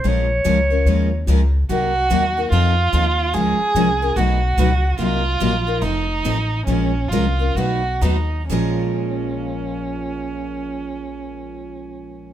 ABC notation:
X:1
M:4/4
L:1/8
Q:"Swing" 1/4=143
K:Bbm
V:1 name="Clarinet"
d6 z2 | z8 | z8 | z8 |
z8 | z8 | z8 |]
V:2 name="Violin"
z8 | G4 F4 | A4 ^F4 | F4 E4 |
D2 F2 ^F2 ^D2 | D8- | D8 |]
V:3 name="Steel-string acoustic guitar"
[F,A,DFB] z [F,A,DFB] [DFB] [F,A,DFB] z [F,A,DFB] z | [C,G,B,EB] z [C,G,B,EB] [B,EB] [F,CE=A] z [F,CEA] z | [F,A,DFB] z [F,A,DFB] [DFB] [=B,,^F,=A,^D^F] z [B,,F,A,DF] z | [C,G,B,EB] z [C,G,B,EB] [B,EB] [F,CE=A] z [F,CEA] z |
[F,A,DFB] z [F,A,DFB] [DFB] [=B,,^F,=A,^D^F] z [B,,F,A,DF] z | [B,,F,A,DFB]8- | [B,,F,A,DFB]8 |]
V:4 name="Steel-string acoustic guitar"
[F,A,DFB] z [F,A,DFB] z [F,A,DFB] z [F,A,DFB] z | [C,G,B,EB] z [C,G,B,EB] z [F,CE=A] z [F,CEA] z | [F,A,DFB] z [F,A,DFB] z [=B,,^F,=A,^D^F=B] z [B,,F,A,DFB] z | [C,G,B,EB] z [C,G,B,EB] z [F,CE=A] z [F,CEA] z |
[F,A,DFB] z [F,A,DFB] z [=B,,^F,=A,^D^F=B] z [B,,F,A,DFB] z | [B,,F,A,DFB]8- | [B,,F,A,DFB]8 |]
V:5 name="Upright bass" clef=bass
B,,,2 D,,2 E,,2 D,,2 | C,,2 E,,2 F,,2 E,,2 | D,, z C,,2 =B,,,2 D,,2 | C,,2 B,,,2 F,,,2 =A,,,2 |
B,,,2 C,,2 =B,,,2 ^D,,2 | B,,,8- | B,,,8 |]